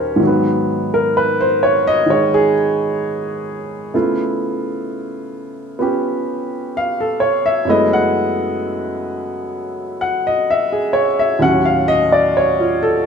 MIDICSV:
0, 0, Header, 1, 2, 480
1, 0, Start_track
1, 0, Key_signature, 4, "minor"
1, 0, Tempo, 933126
1, 105, Time_signature, 4, 2, 24, 8
1, 6718, End_track
2, 0, Start_track
2, 0, Title_t, "Upright piano"
2, 0, Program_c, 0, 0
2, 0, Control_c, 0, 64, 127
2, 0, Note_on_c, 0, 39, 53
2, 0, Note_on_c, 0, 51, 47
2, 0, Note_on_c, 0, 55, 49
2, 0, Note_on_c, 0, 61, 63
2, 0, Note_on_c, 0, 63, 40
2, 0, Note_on_c, 0, 67, 51
2, 0, Note_on_c, 0, 70, 51
2, 0, Note_on_c, 0, 72, 47
2, 0, Note_on_c, 0, 73, 92
2, 82, Note_on_c, 0, 44, 57
2, 94, Note_off_c, 0, 51, 0
2, 98, Note_off_c, 0, 39, 0
2, 101, Note_on_c, 0, 51, 54
2, 107, Note_off_c, 0, 55, 0
2, 111, Note_off_c, 0, 61, 0
2, 111, Control_c, 0, 64, 0
2, 113, Note_off_c, 0, 70, 0
2, 115, Note_off_c, 0, 67, 0
2, 115, Note_off_c, 0, 73, 0
2, 116, Note_off_c, 0, 63, 0
2, 118, Note_on_c, 0, 54, 54
2, 140, Note_on_c, 0, 59, 64
2, 153, Note_off_c, 0, 72, 0
2, 209, Control_c, 0, 64, 127
2, 483, Note_on_c, 0, 70, 79
2, 571, Note_off_c, 0, 70, 0
2, 601, Note_on_c, 0, 71, 82
2, 723, Note_on_c, 0, 72, 81
2, 749, Note_off_c, 0, 71, 0
2, 838, Note_on_c, 0, 73, 83
2, 889, Note_off_c, 0, 72, 0
2, 948, Note_off_c, 0, 73, 0
2, 964, Note_on_c, 0, 75, 97
2, 1052, Note_off_c, 0, 75, 0
2, 1053, Note_off_c, 0, 51, 0
2, 1060, Note_on_c, 0, 51, 47
2, 1077, Note_on_c, 0, 56, 50
2, 1082, Note_on_c, 0, 73, 78
2, 1205, Note_on_c, 0, 68, 90
2, 1229, Note_off_c, 0, 73, 0
2, 1307, Note_off_c, 0, 68, 0
2, 2013, Note_off_c, 0, 44, 0
2, 2021, Note_off_c, 0, 59, 0
2, 2022, Note_off_c, 0, 51, 0
2, 2027, Note_on_c, 0, 49, 51
2, 2027, Note_on_c, 0, 57, 50
2, 2028, Note_on_c, 0, 59, 50
2, 2030, Note_off_c, 0, 56, 0
2, 2031, Note_off_c, 0, 54, 0
2, 2032, Control_c, 0, 64, 0
2, 2032, Note_on_c, 0, 64, 51
2, 2033, Note_on_c, 0, 65, 63
2, 2122, Control_c, 0, 64, 127
2, 2970, Note_off_c, 0, 59, 0
2, 2978, Note_on_c, 0, 59, 48
2, 2980, Note_off_c, 0, 65, 0
2, 2985, Note_on_c, 0, 61, 42
2, 2987, Note_on_c, 0, 65, 42
2, 2994, Note_on_c, 0, 67, 58
2, 3483, Note_on_c, 0, 77, 82
2, 3603, Note_on_c, 0, 69, 69
2, 3629, Note_off_c, 0, 77, 0
2, 3705, Note_on_c, 0, 73, 79
2, 3768, Note_off_c, 0, 69, 0
2, 3820, Note_off_c, 0, 73, 0
2, 3836, Note_on_c, 0, 76, 84
2, 3927, Note_off_c, 0, 76, 0
2, 3934, Note_off_c, 0, 49, 0
2, 3934, Note_on_c, 0, 42, 62
2, 3940, Note_off_c, 0, 59, 0
2, 3941, Note_on_c, 0, 49, 54
2, 3944, Note_off_c, 0, 61, 0
2, 3945, Note_off_c, 0, 57, 0
2, 3945, Note_off_c, 0, 65, 0
2, 3946, Note_on_c, 0, 56, 54
2, 3947, Note_off_c, 0, 64, 0
2, 3948, Note_off_c, 0, 67, 0
2, 3951, Control_c, 0, 64, 0
2, 3952, Note_on_c, 0, 57, 55
2, 3958, Note_on_c, 0, 59, 58
2, 3958, Note_on_c, 0, 64, 68
2, 3961, Note_on_c, 0, 75, 83
2, 4026, Control_c, 0, 64, 127
2, 4081, Note_on_c, 0, 78, 88
2, 4107, Note_off_c, 0, 75, 0
2, 4184, Note_off_c, 0, 78, 0
2, 5150, Note_on_c, 0, 78, 85
2, 5262, Note_off_c, 0, 78, 0
2, 5282, Note_on_c, 0, 75, 84
2, 5369, Note_off_c, 0, 75, 0
2, 5404, Note_on_c, 0, 76, 84
2, 5517, Note_on_c, 0, 68, 63
2, 5548, Note_off_c, 0, 76, 0
2, 5623, Note_on_c, 0, 73, 82
2, 5684, Note_off_c, 0, 68, 0
2, 5739, Note_off_c, 0, 73, 0
2, 5758, Note_on_c, 0, 76, 83
2, 5847, Note_off_c, 0, 76, 0
2, 5857, Note_off_c, 0, 42, 0
2, 5859, Note_on_c, 0, 39, 55
2, 5861, Note_off_c, 0, 49, 0
2, 5863, Note_off_c, 0, 56, 0
2, 5865, Note_on_c, 0, 45, 52
2, 5866, Note_off_c, 0, 57, 0
2, 5866, Note_on_c, 0, 54, 51
2, 5868, Control_c, 0, 64, 0
2, 5869, Note_off_c, 0, 59, 0
2, 5869, Note_off_c, 0, 64, 0
2, 5869, Note_on_c, 0, 61, 64
2, 5876, Note_on_c, 0, 78, 93
2, 5958, Control_c, 0, 64, 127
2, 5995, Note_on_c, 0, 77, 81
2, 6024, Note_off_c, 0, 78, 0
2, 6111, Note_on_c, 0, 75, 100
2, 6163, Note_off_c, 0, 77, 0
2, 6223, Note_off_c, 0, 75, 0
2, 6237, Note_on_c, 0, 74, 80
2, 6326, Note_off_c, 0, 74, 0
2, 6362, Note_on_c, 0, 73, 75
2, 6483, Note_on_c, 0, 65, 61
2, 6507, Note_off_c, 0, 73, 0
2, 6598, Note_on_c, 0, 69, 81
2, 6647, Note_off_c, 0, 65, 0
2, 6706, Note_off_c, 0, 69, 0
2, 6718, Note_off_c, 0, 39, 0
2, 6718, Note_off_c, 0, 45, 0
2, 6718, Note_off_c, 0, 54, 0
2, 6718, Note_off_c, 0, 61, 0
2, 6718, End_track
0, 0, End_of_file